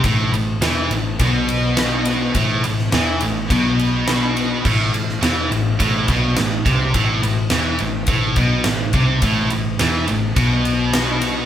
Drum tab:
CC |----------------|----------------|x---------------|----------------|
RD |x-x-x-x-x-x-x-x-|x-x-x-x-x-x-x-x-|--x-x-x-x-x-x-x-|x-x-x-x-x-x-x-x-|
SD |----o-------o-o-|---oo-------o---|---oo-------o-o-|----o-------o---|
BD |o-------o-------|o-------o-------|o-------o-o---o-|o-------o-o---o-|

CC |----------------|
RD |x-x-x-x-x-x-x-x-|
SD |----o-------o-o-|
BD |o-------o-------|